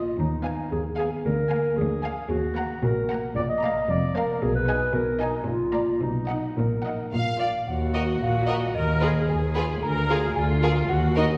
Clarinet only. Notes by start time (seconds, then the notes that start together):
Already playing: F4
0.18 D#4
0.71 G#4
0.98 G#4
1.25 A#4
1.77 G#4
2.30 F#4
2.83 A#4
3.36 D5
3.49 D#5
3.90 D5
4.15 A#4
4.42 G#4
4.55 B4
4.94 A#4
5.22 D#4
5.47 F4
6.02 D#4
6.57 A#4